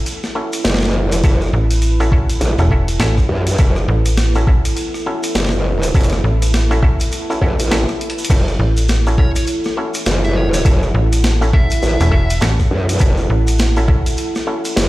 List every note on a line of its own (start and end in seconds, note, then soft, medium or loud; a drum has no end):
0.00 14.89 E4 medium
0.00 14.89 A4 medium
0.00 8.65 B4 medium
0.06 closed hi-hat soft
0.06 shekere medium
0.23 cross-stick soft
0.23 snare soft
0.23 shekere soft
0.35 1.21 C#4 medium
0.35 1.21 E4 medium
0.35 1.21 F#4 medium
0.35 1.21 A4 medium
0.53 closed hi-hat medium
0.53 shekere medium
0.65 1.05 F#1 loud
0.65 snare loud
0.65 closed hi-hat medium
0.65 shekere medium
0.70 snare medium
0.74 snare medium
0.78 snare medium
0.78 shekere soft
0.83 snare medium
0.85 snare soft
0.89 snare soft
0.92 snare soft
1.05 1.22 F1 loud
1.12 closed hi-hat medium
1.12 shekere medium
1.24 1.51 F#1 loud
1.24 1.42 C#4 loud
1.24 1.41 E4 medium
1.24 1.42 F#4 loud
1.24 1.41 A4 loud
1.24 kick loud
1.24 closed hi-hat medium
1.24 shekere medium
1.41 shekere soft
1.47 cross-stick medium
1.53 2.40 A1 loud
1.71 closed hi-hat medium
1.71 shekere medium
1.82 closed hi-hat soft
1.82 shekere medium
2.00 2.10 C#4 medium
2.00 2.10 E4 medium
2.00 2.10 F#4 medium
2.00 2.10 A4 loud
2.00 shekere soft
2.12 2.30 C#4 medium
2.12 2.30 E4 medium
2.12 2.30 F#4 medium
2.12 2.30 A4 loud
2.12 kick loud
2.30 closed hi-hat medium
2.30 shekere medium
2.41 2.56 A1 loud
2.41 closed hi-hat soft
2.41 shekere medium
2.58 2.98 E1 medium
2.58 2.69 C#4 medium
2.58 2.69 E4 medium
2.58 2.69 F#4 medium
2.58 2.69 A4 medium
2.58 cross-stick soft
2.58 shekere soft
2.71 2.89 C#4 medium
2.71 2.89 E4 medium
2.71 2.89 F#4 medium
2.71 2.89 A4 loud
2.71 kick medium
2.88 closed hi-hat medium
2.88 shekere medium
3.00 3.27 A1 medium
3.00 3.56 C#4 loud
3.00 3.56 E4 medium
3.00 3.56 F#4 medium
3.00 3.56 A4 loud
3.00 snare loud
3.00 closed hi-hat medium
3.00 shekere medium
3.18 kick medium
3.18 cross-stick soft
3.18 shekere soft
3.29 3.57 F#2 loud
3.47 closed hi-hat medium
3.47 shekere medium
3.58 3.87 F#1 loud
3.58 3.77 C#4 medium
3.58 3.77 E4 medium
3.58 3.77 F#4 medium
3.58 3.77 A4 loud
3.58 kick loud
3.58 closed hi-hat medium
3.58 shekere medium
3.76 cross-stick medium
3.76 shekere soft
3.88 4.75 A1 loud
4.05 closed hi-hat medium
4.05 shekere medium
4.17 snare loud
4.17 closed hi-hat medium
4.17 shekere medium
4.35 4.45 C#4 medium
4.35 4.45 E4 medium
4.35 4.45 F#4 medium
4.35 4.45 A4 loud
4.35 shekere soft
4.47 4.65 C#4 medium
4.47 4.65 E4 medium
4.47 4.65 F#4 medium
4.47 4.65 A4 medium
4.47 kick loud
4.65 closed hi-hat medium
4.65 shekere medium
4.77 closed hi-hat medium
4.77 shekere medium
4.94 cross-stick soft
4.94 shekere soft
5.06 5.92 C#4 medium
5.06 5.92 E4 medium
5.06 5.92 F#4 medium
5.06 5.92 A4 medium
5.23 closed hi-hat medium
5.23 shekere medium
5.35 5.92 F#1 medium
5.35 snare loud
5.35 closed hi-hat soft
5.35 shekere medium
5.40 snare medium
5.45 snare medium
5.49 snare medium
5.49 shekere soft
5.82 closed hi-hat medium
5.82 shekere medium
5.94 6.22 F#1 loud
5.94 6.12 C#4 loud
5.94 6.12 E4 medium
5.94 6.12 F#4 medium
5.94 6.12 A4 loud
5.94 kick loud
5.94 closed hi-hat soft
5.94 shekere medium
5.98 closed hi-hat soft
6.01 closed hi-hat soft
6.03 closed hi-hat soft
6.10 cross-stick medium
6.10 snare soft
6.10 closed hi-hat soft
6.10 shekere soft
6.24 7.10 A1 loud
6.42 closed hi-hat medium
6.42 shekere medium
6.54 snare loud
6.54 closed hi-hat medium
6.54 shekere medium
6.71 6.81 C#4 medium
6.71 6.81 E4 medium
6.71 6.81 F#4 medium
6.71 6.81 A4 loud
6.71 shekere soft
6.83 7.00 C#4 medium
6.83 7.00 E4 medium
6.83 7.00 F#4 medium
6.83 7.00 A4 loud
6.83 kick loud
7.00 closed hi-hat medium
7.00 shekere medium
7.12 closed hi-hat medium
7.12 shekere medium
7.30 7.40 C#4 medium
7.30 7.40 E4 medium
7.30 7.40 F#4 medium
7.30 7.40 A4 medium
7.30 cross-stick soft
7.30 shekere soft
7.41 7.86 A1 loud
7.41 7.59 C#4 medium
7.41 7.59 E4 medium
7.41 7.59 F#4 medium
7.41 7.59 A4 loud
7.41 kick medium
7.59 closed hi-hat medium
7.59 shekere medium
7.71 8.27 C#4 medium
7.71 8.27 E4 medium
7.71 8.27 F#4 medium
7.71 8.27 A4 loud
7.71 snare loud
7.71 closed hi-hat medium
7.71 shekere medium
7.88 cross-stick soft
7.88 shekere soft
8.01 closed hi-hat medium
8.10 closed hi-hat medium
8.18 shekere medium
8.25 closed hi-hat medium
8.30 8.57 F#1 loud
8.30 8.48 C#4 medium
8.30 8.48 E4 medium
8.30 8.47 F#4 medium
8.30 8.47 A4 loud
8.30 kick loud
8.30 closed hi-hat medium
8.30 crash medium
8.30 shekere medium
8.48 cross-stick medium
8.48 shekere soft
8.59 9.45 A1 loud
8.59 14.89 F#5 medium
8.77 closed hi-hat medium
8.77 shekere medium
8.88 snare loud
8.88 closed hi-hat medium
8.88 shekere medium
9.06 9.16 C#4 medium
9.06 9.16 E4 medium
9.06 9.16 F#4 medium
9.06 9.16 A4 medium
9.06 shekere soft
9.18 9.36 C#4 medium
9.18 9.36 E4 medium
9.18 9.36 F#4 medium
9.18 9.36 A4 medium
9.18 9.29 C#5 medium
9.18 kick loud
9.35 9.43 C#5 medium
9.35 closed hi-hat medium
9.35 shekere medium
9.47 closed hi-hat medium
9.47 shekere medium
9.64 cross-stick soft
9.64 snare soft
9.64 shekere soft
9.77 10.62 C#4 medium
9.77 10.62 E4 medium
9.77 10.62 F#4 medium
9.77 10.62 A4 medium
9.94 closed hi-hat medium
9.94 shekere medium
10.06 10.63 F#1 loud
10.06 snare loud
10.06 closed hi-hat medium
10.06 shekere medium
10.24 10.34 E5 loud
10.24 shekere soft
10.36 10.47 C#5 medium
10.53 10.61 C#5 medium
10.53 closed hi-hat medium
10.53 shekere medium
10.65 10.92 F#1 loud
10.65 10.83 C#4 loud
10.65 10.83 E4 medium
10.65 10.83 F#4 medium
10.65 10.83 A4 loud
10.65 kick loud
10.65 closed hi-hat medium
10.65 shekere medium
10.83 cross-stick medium
10.83 shekere soft
10.94 11.81 A1 loud
11.13 closed hi-hat medium
11.13 shekere medium
11.24 snare loud
11.24 closed hi-hat medium
11.24 shekere medium
11.41 11.51 C#4 medium
11.41 11.51 E4 medium
11.41 11.51 F#4 medium
11.41 11.51 A4 loud
11.41 shekere soft
11.53 11.71 C#4 medium
11.53 11.71 E4 medium
11.53 11.71 F#4 medium
11.53 11.71 A4 loud
11.53 12.37 E5 loud
11.53 kick loud
11.70 closed hi-hat medium
11.70 shekere medium
11.83 11.98 A1 loud
11.83 shekere medium
12.00 12.40 E1 medium
12.00 12.10 C#4 medium
12.00 12.10 E4 medium
12.00 12.10 F#4 medium
12.00 12.10 A4 medium
12.00 cross-stick soft
12.00 closed hi-hat medium
12.00 shekere soft
12.11 12.30 C#4 loud
12.11 12.30 E4 medium
12.11 12.30 F#4 medium
12.11 12.30 A4 loud
12.11 kick medium
12.30 closed hi-hat medium
12.30 shekere medium
12.41 12.69 A1 loud
12.41 12.97 C#4 loud
12.41 12.97 E4 medium
12.41 12.97 F#4 medium
12.41 12.97 A4 loud
12.41 snare loud
12.41 closed hi-hat medium
12.41 shekere medium
12.59 kick medium
12.59 cross-stick soft
12.59 shekere soft
12.71 12.98 F#2 loud
12.89 closed hi-hat medium
12.89 shekere medium
12.99 13.28 F#1 loud
12.99 13.18 C#4 loud
12.99 13.18 E4 medium
12.99 13.18 F#4 medium
12.99 13.18 A4 loud
12.99 kick loud
12.99 closed hi-hat medium
12.99 shekere medium
13.17 shekere soft
13.30 14.16 A1 loud
13.47 closed hi-hat medium
13.47 shekere medium
13.58 snare loud
13.58 closed hi-hat medium
13.58 shekere medium
13.76 13.87 C#4 medium
13.76 13.87 E4 medium
13.76 13.87 F#4 medium
13.76 13.87 A4 medium
13.76 shekere soft
13.88 14.06 C#4 medium
13.88 14.06 E4 medium
13.88 14.06 F#4 medium
13.88 14.06 A4 medium
13.88 kick loud
14.06 closed hi-hat medium
14.06 shekere medium
14.17 closed hi-hat medium
14.17 shekere medium
14.35 cross-stick soft
14.35 snare soft
14.35 shekere soft
14.47 14.89 C#4 medium
14.47 14.89 E4 medium
14.47 14.89 F#4 medium
14.47 14.89 A4 medium
14.65 closed hi-hat medium
14.65 shekere medium
14.76 14.89 F#1 loud
14.76 snare loud
14.76 closed hi-hat medium
14.76 shekere medium